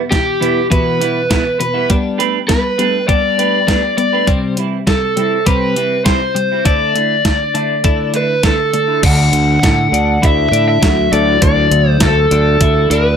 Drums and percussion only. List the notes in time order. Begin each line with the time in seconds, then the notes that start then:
0.12 kick, snare, closed hi-hat
0.42 closed hi-hat
0.72 kick, closed hi-hat
1.02 closed hi-hat
1.31 kick, snare, closed hi-hat
1.61 closed hi-hat
1.90 kick, closed hi-hat
2.20 closed hi-hat
2.49 kick, snare, closed hi-hat
2.79 closed hi-hat
3.09 kick, closed hi-hat
3.39 closed hi-hat
3.68 kick, snare, closed hi-hat
3.98 closed hi-hat
4.27 kick, closed hi-hat
4.57 closed hi-hat
4.87 kick, snare, closed hi-hat
5.17 closed hi-hat
5.47 kick, closed hi-hat
5.76 closed hi-hat
6.06 kick, snare, closed hi-hat
6.36 closed hi-hat
6.65 kick, closed hi-hat
6.96 closed hi-hat
7.25 kick, snare, closed hi-hat
7.55 closed hi-hat
7.84 kick, closed hi-hat
8.14 closed hi-hat
8.43 kick, snare, closed hi-hat
8.74 closed hi-hat
9.03 kick, closed hi-hat, crash
9.33 closed hi-hat
9.63 kick, snare, closed hi-hat
9.94 closed hi-hat
10.23 kick, closed hi-hat
10.53 closed hi-hat
10.83 kick, snare, closed hi-hat
11.13 closed hi-hat
11.42 kick, closed hi-hat
11.72 closed hi-hat
12.00 kick, snare, closed hi-hat
12.31 closed hi-hat
12.61 kick, closed hi-hat
12.91 closed hi-hat